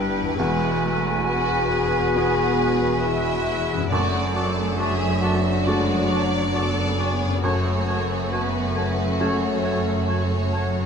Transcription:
0.00 0.34 G1 medium
0.00 0.33 G2 medium
0.00 0.34 G2 medium
0.00 0.38 G3 medium
0.00 0.20 B3 medium
0.00 0.23 B3 medium
0.00 0.34 B3 medium
0.00 0.33 D4 medium
0.00 0.35 D4 soft
0.00 0.37 D4 medium
0.00 1.28 E4 medium
0.00 0.20 G4 medium
0.00 0.33 B4 medium
0.00 0.35 B4 medium
0.00 0.64 B4 medium
0.00 1.25 B4 medium
0.00 0.34 G5 medium
0.20 3.86 E2 medium
0.25 3.88 B3 medium
0.29 3.81 F#4 medium
0.34 3.86 F#4 medium
0.34 3.74 F#4 medium
0.34 3.92 G#4 medium
0.34 3.87 G#4 medium
0.38 3.87 E1 medium
0.38 3.88 E2 medium
0.38 0.83 G#3 medium
0.38 3.87 B4 medium
0.38 3.68 G#5 medium
0.84 1.28 A3 medium
1.26 3.04 B3 medium
1.26 1.70 F#4 medium
1.26 2.99 B4 medium
1.71 2.14 G#4 medium
2.15 3.87 B3 medium
2.15 3.88 F#4 soft
2.15 3.01 G#4 medium
2.15 3.88 G#4 medium
3.02 3.90 G#3 medium
3.02 3.92 E4 medium
3.02 3.90 E5 medium
3.74 7.23 F#2 medium
3.78 7.40 D4 medium
3.82 7.33 F#4 medium
3.87 7.38 F#3 medium
3.87 7.77 A3 medium
3.87 7.39 D4 loud
3.87 4.74 D5 medium
3.91 7.39 F#1 medium
3.91 5.19 F#2 medium
3.91 7.39 F#2 medium
3.91 7.40 F#2 medium
3.91 5.63 A3 medium
3.91 4.07 F#4 medium
3.91 4.32 F#4 medium
3.91 4.08 D5 medium
3.91 4.02 A5 medium
4.34 4.51 F#4 medium
4.34 4.79 A4 medium
4.34 4.52 D5 medium
4.34 4.44 A5 medium
4.78 4.95 F#4 medium
4.78 5.23 G#4 medium
4.78 4.95 D5 medium
4.78 5.64 E5 medium
4.78 4.89 A5 medium
5.22 5.38 F#4 medium
5.22 6.55 F#4 medium
5.22 5.40 D5 medium
5.22 5.34 A5 medium
5.65 6.10 G#3 medium
5.65 7.40 A3 medium
5.65 7.39 D4 medium
5.65 5.82 F#4 medium
5.65 7.39 F#4 medium
5.65 7.42 D5 medium
5.65 5.83 D5 medium
5.65 5.78 A5 medium
6.11 6.55 F#3 medium
6.11 6.27 F#4 medium
6.11 6.27 D5 medium
6.11 6.22 A5 medium
6.54 7.43 B3 medium
6.54 6.70 F#4 medium
6.54 6.99 A4 medium
6.54 6.71 D5 medium
6.54 6.65 A5 medium
6.99 7.15 F#4 medium
6.99 7.44 G#4 medium
6.99 7.15 D5 medium
6.99 7.10 A5 medium
7.25 10.78 F#2 medium
7.29 10.86 C#4 medium
7.34 10.86 F#4 medium
7.38 10.86 A4 medium
7.43 10.86 F#1 medium
7.43 10.86 F#2 medium
7.43 10.78 A3 medium
7.43 7.87 A3 medium
7.43 10.78 C#4 medium
7.43 10.86 F#4 medium
7.43 7.60 F#4 medium
7.43 8.30 C#5 medium
7.43 7.60 C#5 medium
7.43 7.54 A5 medium
7.88 8.31 A3 medium
7.88 8.04 F#4 medium
7.88 8.04 C#5 medium
7.88 7.99 A5 medium
8.31 8.76 B3 medium
8.31 8.49 F#4 medium
8.31 9.18 B4 medium
8.31 8.48 C#5 medium
8.31 8.42 A5 medium
8.75 10.07 A3 medium
8.75 8.91 F#4 medium
8.75 8.92 C#5 medium
8.75 8.85 A5 medium
9.18 10.86 C#4 soft
9.18 9.35 F#4 medium
9.18 10.86 F#4 soft
9.18 10.86 A4 medium
9.18 10.06 C#5 medium
9.18 9.37 C#5 medium
9.18 9.28 A5 medium
9.62 9.79 F#4 medium
9.62 9.80 C#5 medium
9.62 9.72 A5 medium
10.05 10.52 A3 medium
10.05 10.23 F#4 medium
10.05 10.86 C#5 medium
10.05 10.15 A5 medium
10.10 10.26 C#5 medium
10.51 10.86 F#3 medium
10.51 10.68 F#4 medium
10.51 10.70 C#5 medium
10.51 10.62 A5 medium
10.80 10.86 F#2 medium

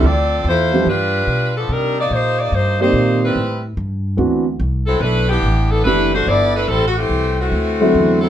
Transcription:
0.03 0.43 D2 medium
0.03 0.46 C4 medium
0.03 0.46 F4 medium
0.03 0.46 A4 medium
0.03 0.46 D5 loud
0.45 0.85 E2 medium
0.45 0.85 C5 medium
0.49 0.86 A3 medium
0.49 0.86 E4 medium
0.49 0.85 F4 medium
0.72 0.85 F3 medium
0.72 0.85 G3 medium
0.72 0.85 B3 medium
0.72 0.85 D4 medium
0.72 0.86 G4 medium
0.86 1.26 G2 medium
0.86 1.53 G3 medium
0.86 1.53 D4 medium
0.86 1.53 B4 medium
0.90 1.53 F4 medium
1.27 1.68 B2 medium
1.57 1.70 F3 medium
1.57 1.70 B3 medium
1.57 1.69 D4 medium
1.57 1.69 A4 medium
1.69 2.09 C3 medium
1.69 1.98 G3 medium
1.69 1.98 D4 medium
1.69 1.99 D#4 medium
1.69 1.98 A#4 medium
2.00 2.11 A#3 medium
2.00 2.11 D#4 medium
2.00 2.11 G4 medium
2.00 2.12 D5 medium
2.11 2.51 A#2 medium
2.11 2.39 A#3 medium
2.11 2.38 D#4 medium
2.11 2.39 G4 medium
2.11 2.40 C5 medium
2.39 2.53 A#3 medium
2.39 2.53 D#4 medium
2.39 2.53 G4 medium
2.39 2.53 D5 medium
2.52 2.92 G2 medium
2.52 2.81 A#3 medium
2.52 2.81 D#4 medium
2.52 2.81 G4 medium
2.52 2.81 C5 medium
2.80 3.33 D#3 medium
2.80 3.33 A#3 medium
2.80 3.20 A#3 medium
2.80 3.33 C4 medium
2.80 3.20 D#4 medium
2.80 3.33 G4 medium
2.80 3.20 G4 medium
2.80 3.20 C5 medium
2.80 3.33 D5 medium
2.93 3.34 A#2 medium
3.24 3.62 G3 medium
3.24 3.62 C4 medium
3.24 3.62 E4 medium
3.24 3.62 B4 medium
3.35 3.76 A2 medium
3.77 4.17 G2 medium
4.17 4.59 D2 medium
4.17 4.43 E3 medium
4.17 4.43 B3 medium
4.17 4.43 C4 medium
4.17 4.43 D4 medium
4.17 4.43 F#4 medium
4.60 5.00 C2 medium
4.87 5.01 F#3 medium
4.87 5.01 C4 medium
4.87 5.00 E4 medium
4.87 5.00 A4 medium
5.01 5.42 B1 medium
5.01 5.29 A3 medium
5.01 5.27 D4 medium
5.01 5.29 E4 medium
5.01 5.29 B4 loud
5.28 5.68 E3 medium
5.28 5.68 B3 medium
5.28 5.68 D4 medium
5.28 5.68 G4 medium
5.43 5.83 A1 medium
5.70 5.85 E3 medium
5.70 5.85 B3 medium
5.70 5.84 D4 medium
5.70 5.85 A4 medium
5.84 6.25 F#1 medium
5.84 6.10 E3 medium
5.84 6.10 A3 medium
5.84 6.11 A3 medium
5.84 6.11 B3 soft
5.84 6.11 D4 medium
5.84 6.10 D4 soft
5.84 6.11 E4 medium
5.84 6.11 G4 medium
5.84 6.11 B4 loud
6.15 6.28 A3 medium
6.15 6.28 D4 medium
6.15 6.28 F#4 medium
6.15 6.28 C5 medium
6.26 6.67 G1 medium
6.26 6.56 B3 medium
6.26 6.56 E4 medium
6.26 6.56 A4 medium
6.26 6.56 D5 loud
6.56 6.68 A3 medium
6.56 6.69 D4 medium
6.56 6.68 E4 medium
6.56 6.69 B4 medium
6.68 7.09 A1 medium
6.68 6.87 G3 medium
6.68 6.88 C4 medium
6.68 6.87 E4 medium
6.68 6.87 A4 loud
6.88 6.97 F#4 medium
6.97 7.39 E3 medium
6.97 7.39 A3 medium
6.97 7.39 C4 medium
6.97 7.39 G4 medium
7.10 7.50 C2 medium
7.41 8.19 E3 medium
7.41 8.19 A3 medium
7.41 8.19 C4 medium
7.41 8.19 F#4 medium
7.52 7.92 D2 medium
7.80 8.29 D3 medium
7.80 8.29 F#3 medium
7.80 8.29 A3 medium
7.80 8.29 C4 medium
7.80 8.29 E4 medium
7.94 8.29 E2 medium
8.21 8.29 F#3 medium
8.21 8.29 C4 medium
8.21 8.29 E4 medium
8.21 8.29 A4 medium

